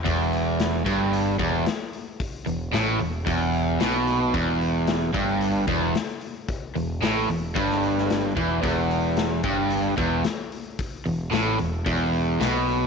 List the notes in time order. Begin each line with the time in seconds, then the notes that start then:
0.04 E1 E2, kick, open hi-hat
0.33 open hi-hat
0.59 snare, open hi-hat
0.86 G1 G2, kick, open hi-hat
1.13 open hi-hat
1.39 E1 E2, kick, open hi-hat
1.66 snare, open hi-hat
1.93 open hi-hat
2.20 kick, open hi-hat
2.46 E1 E2, open hi-hat
2.73 A1 A2, snare, open hi-hat
2.99 E1 E2, open hi-hat
3.26 E1 E2, kick, open hi-hat
3.53 open hi-hat
3.80 B1 B2, snare, open hi-hat
4.07 open hi-hat
4.34 E1 E2, kick, open hi-hat
4.61 open hi-hat
4.87 snare, open hi-hat
5.13 G1 G2, kick, open hi-hat
5.41 open hi-hat
5.67 E1 E2, kick, open hi-hat
5.95 snare, open hi-hat
6.21 open hi-hat
6.48 kick, open hi-hat
6.75 E1 E2, open hi-hat
7.01 A1 A2, snare, open hi-hat
7.28 E1 E2, open hi-hat
7.55 G1 G2, kick, open hi-hat
7.70 snare
7.83 open hi-hat
7.98 snare
8.10 snare, open hi-hat
8.36 E1 E2, kick, open hi-hat
8.62 E1 E2, kick, open hi-hat
8.91 open hi-hat
9.17 snare, open hi-hat
9.43 G1 G2, kick, open hi-hat
9.70 open hi-hat
9.97 E1 E2, kick, open hi-hat
10.24 snare, open hi-hat
10.52 open hi-hat
10.79 kick, open hi-hat
11.06 E1 E2, open hi-hat
11.31 A1 A2, snare, open hi-hat
11.59 E1 E2, open hi-hat
11.86 E1 E2, kick, open hi-hat
12.13 open hi-hat
12.40 B1 B2, snare, open hi-hat
12.68 open hi-hat